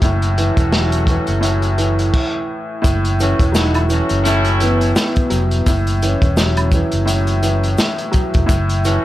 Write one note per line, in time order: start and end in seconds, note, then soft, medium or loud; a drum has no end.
0.02 0.49 F#1 loud
0.02 1.39 A2 medium
0.02 2.45 A3 medium
0.02 2.45 C#4 medium
0.02 2.45 F#4 loud
0.02 kick loud
0.02 closed hi-hat medium
0.22 closed hi-hat medium
0.38 1.08 E3 medium
0.38 closed hi-hat medium
0.57 1.17 E1 loud
0.57 kick medium
0.57 closed hi-hat medium
0.72 2.14 F#3 medium
0.72 snare loud
0.92 closed hi-hat medium
1.07 1.76 E3 medium
1.07 kick loud
1.07 closed hi-hat medium
1.27 2.10 F#1 medium
1.27 closed hi-hat medium
1.41 2.80 A2 medium
1.41 closed hi-hat medium
1.62 closed hi-hat soft
1.78 2.84 E3 medium
1.78 closed hi-hat medium
1.99 closed hi-hat soft
2.14 kick loud
2.14 crash medium
2.82 3.32 F#1 loud
2.82 4.24 A2 loud
2.82 kick loud
2.82 closed hi-hat medium
2.82 shaker medium
3.05 closed hi-hat medium
3.19 3.87 E3 medium
3.19 3.49 A3 medium
3.19 3.51 C#4 medium
3.19 3.49 C#4 medium
3.19 3.49 F#4 medium
3.19 3.52 C#5 medium
3.19 closed hi-hat medium
3.19 shaker medium
3.39 4.00 E1 medium
3.39 kick loud
3.39 closed hi-hat medium
3.52 4.95 F#3 medium
3.52 3.73 D#4 medium
3.52 3.83 E4 medium
3.52 3.83 F#4 medium
3.52 3.83 A4 medium
3.52 3.73 D#5 medium
3.52 snare loud
3.52 shaker medium
3.74 3.88 E4 medium
3.74 3.89 E5 medium
3.74 closed hi-hat medium
3.74 high woodblock medium
3.89 4.60 E3 medium
3.89 4.19 A3 medium
3.89 4.57 C#4 medium
3.89 4.19 C#4 medium
3.89 4.19 F#4 medium
3.89 4.57 C#5 medium
3.89 closed hi-hat medium
3.89 shaker medium
4.09 4.92 F#1 medium
4.09 closed hi-hat medium
4.24 5.65 A2 medium
4.24 4.91 A3 loud
4.24 4.91 C#4 loud
4.24 4.91 E4 loud
4.24 closed hi-hat medium
4.24 shaker medium
4.45 closed hi-hat soft
4.60 5.67 E3 medium
4.60 5.63 B3 medium
4.60 5.63 B4 medium
4.60 closed hi-hat medium
4.60 shaker medium
4.81 closed hi-hat medium
4.96 snare loud
4.96 shaker medium
5.16 kick medium
5.16 closed hi-hat medium
5.30 5.62 F1 loud
5.30 5.66 F#3 medium
5.30 closed hi-hat medium
5.30 shaker soft
5.51 closed hi-hat medium
5.66 6.14 F#1 loud
5.66 7.04 A2 medium
5.66 kick loud
5.66 closed hi-hat medium
5.66 shaker medium
5.87 closed hi-hat medium
6.02 6.73 E3 medium
6.02 7.95 C#4 medium
6.02 7.95 C#5 medium
6.02 closed hi-hat medium
6.02 shaker soft
6.22 6.82 E1 loud
6.22 kick medium
6.22 closed hi-hat medium
6.37 7.79 F#3 medium
6.37 snare loud
6.37 shaker medium
6.57 closed hi-hat medium
6.57 high woodblock medium
6.72 7.41 E3 medium
6.72 kick loud
6.72 closed hi-hat medium
6.72 shaker medium
6.92 7.75 F#1 medium
6.92 closed hi-hat medium
7.05 8.45 A2 medium
7.05 closed hi-hat medium
7.05 shaker medium
7.27 closed hi-hat soft
7.43 8.49 E3 medium
7.43 closed hi-hat medium
7.43 shaker medium
7.63 closed hi-hat soft
7.78 snare loud
7.78 shaker medium
7.98 closed hi-hat medium
8.11 8.48 F#3 medium
8.11 kick medium
8.11 closed hi-hat medium
8.11 shaker soft
8.34 8.47 F1 medium
8.34 kick loud
8.34 closed hi-hat medium
8.46 8.96 F#1 loud
8.46 9.05 A2 loud
8.46 kick loud
8.46 closed hi-hat medium
8.46 shaker medium
8.69 closed hi-hat medium
8.84 9.05 E3 medium
8.84 9.05 A3 medium
8.84 9.05 C#4 medium
8.84 9.05 F#4 medium
8.84 closed hi-hat medium
8.84 shaker medium